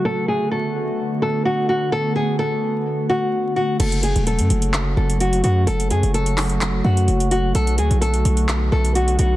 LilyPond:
<<
  \new Staff \with { instrumentName = "Nylon-string guitar" } { \time 4/4 \key fis \minor \tempo 4 = 128 a'8 gis'8 a'4. a'8 fis'8 fis'8 | a'8 gis'8 a'4. fis'4 fis'8 | a'8 gis'8 a'4. a'8 fis'8 fis'8 | a'8 gis'8 a'4. fis'4 fis'8 |
a'8 gis'8 a'4. a'8 fis'8 fis'8 | }
  \new Staff \with { instrumentName = "Ambient pad" } { \time 4/4 \key fis \minor << { fis'1~ | fis'1 | fis'1~ | fis'1~ |
fis'1 | } \\ { <d a b>1~ | <d a b>1 | <cis fis a>1~ | <cis fis a>1 |
<d b>1 | } >> }
  \new Staff \with { instrumentName = "808-style bass" } { \clef bass \time 4/4 \key fis \minor r1 | r1 | fis,,8. e,,8 fis,16 fis,,4 fis,,4 fis,8 | fis,,8 fis,16 fis,,4.~ fis,,16 fis,8 fis,,4 |
b,,8 d,16 b,,8. b,,4 b,,4 b,,8 | }
  \new DrumStaff \with { instrumentName = "Drums" } \drummode { \time 4/4 r4 r4 r4 r4 | r4 r4 r4 r4 | <cymc hh>16 hh16 hh16 hh16 hh16 hh16 hh16 hh16 <hc hh>8. hh16 hh16 hh16 hh8 | hh16 hh16 hh16 hh16 hh16 hh16 <hc hho>16 hh16 <hc hh>8. hh16 hh16 hh16 hh8 |
hh16 hh16 hh16 hh16 hh16 hh16 hh16 hh16 <hc hh>8. hh16 hh16 hh16 hh8 | }
>>